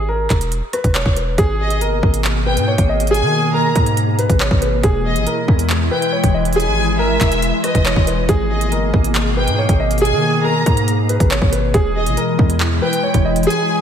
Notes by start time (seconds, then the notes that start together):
Already playing: G#1
0.09 A#4
0.30 E1, kick, clap, closed hi-hat
0.41 closed hi-hat
0.52 closed hi-hat
0.73 B4, cross-stick, closed hi-hat
0.84 E1, kick, closed hi-hat
0.95 C#5, clap
1.06 E1, kick
1.17 B4, closed hi-hat
1.38 G#1 B2 A#3 G#4, kick, closed hi-hat
1.60 D#5
1.70 closed hi-hat
1.81 G1 A#4, closed hi-hat
2.03 G#1, kick
2.14 closed hi-hat
2.24 clap
2.46 B4 G5
2.57 G#2, closed hi-hat
2.68 C#5
2.78 G#1, kick, closed hi-hat
2.89 D#5
3.00 closed hi-hat
3.07 G#4 G#5, closed hi-hat
3.14 closed hi-hat
3.22 D#3
3.54 A#4 A#5
3.76 G#2, kick, closed hi-hat
3.86 closed hi-hat
3.97 closed hi-hat
4.19 B4, closed hi-hat
4.30 G#1, kick, closed hi-hat
4.40 C#5, clap
4.51 G#1, kick
4.62 B4, closed hi-hat
4.83 E1 E3 G#3 E4 G#4, kick, closed hi-hat
5.05 D#5
5.16 G#1, closed hi-hat
5.27 A#4, closed hi-hat
5.48 E2, kick
5.59 closed hi-hat
5.70 clap
5.91 B4 G5
6.02 closed hi-hat
6.13 C#5
6.24 E1, kick, closed hi-hat
6.34 D#5
6.45 closed hi-hat
6.53 G#4 G#5, closed hi-hat
6.60 closed hi-hat
6.67 G#1
6.99 A#4 E5
7.21 E1, kick, clap, closed hi-hat
7.32 closed hi-hat
7.42 closed hi-hat
7.64 B4 D#5, cross-stick, closed hi-hat
7.75 E1, kick, closed hi-hat
7.86 C#5, clap
7.96 E1, kick
8.07 B4, closed hi-hat
8.29 G#1 B2 A#3 G#4, kick, closed hi-hat
8.50 D#5
8.61 closed hi-hat
8.72 G1 A#4, closed hi-hat
8.94 G#1, kick
9.04 closed hi-hat
9.15 clap
9.37 B4 G5
9.48 G#2, closed hi-hat
9.58 C#5
9.69 G#1, kick, closed hi-hat
9.80 D#5
9.91 closed hi-hat
9.98 G#4 G#5, closed hi-hat
10.05 closed hi-hat
10.12 D#3
10.44 A#4 A#5
10.66 G#2, kick, closed hi-hat
10.77 closed hi-hat
10.88 closed hi-hat
11.09 B4, closed hi-hat
11.20 G#1, kick, closed hi-hat
11.31 C#5, clap
11.42 G#1, kick
11.52 B4, closed hi-hat
11.74 E1 E3 G#3 E4 G#4, kick, closed hi-hat
11.96 D#5
12.06 G#1, closed hi-hat
12.17 A#4, closed hi-hat
12.39 E2, kick
12.50 closed hi-hat
12.60 clap
12.82 B4 G5
12.93 closed hi-hat
13.03 C#5
13.14 E1, kick, closed hi-hat
13.25 D#5
13.36 closed hi-hat
13.43 G#4 G#5, closed hi-hat
13.50 closed hi-hat